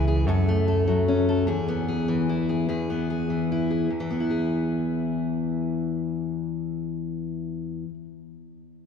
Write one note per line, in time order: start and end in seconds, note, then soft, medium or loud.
0.00 0.24 C#2 medium
0.00 0.24 E3 medium
0.00 0.24 E4 medium
0.08 0.25 G#4 medium
0.27 1.45 F#2 medium
0.27 1.46 F#2 medium
0.27 0.67 A4 medium
0.48 1.46 A3 soft
0.68 1.27 A4 soft
0.88 1.45 F#3 medium
1.08 1.46 C#4 medium
1.29 1.46 A4 soft
1.47 2.68 E2 medium
1.47 1.88 G#4 medium
1.68 2.90 B3 soft
1.88 2.49 G#4 soft
2.08 3.29 E3 soft
2.29 3.51 E4 soft
2.49 2.69 G#4 soft
2.69 3.89 E2 soft
2.69 3.09 G#4 soft
2.90 3.88 B3 soft
3.10 3.69 G#4 soft
3.30 3.88 E3 soft
3.52 3.89 E4 soft
3.71 3.88 G#4 soft
3.90 7.84 E2 soft
4.00 7.88 E3 soft
4.10 7.94 B3 soft
4.20 7.99 E4 soft
4.30 8.04 G#4 soft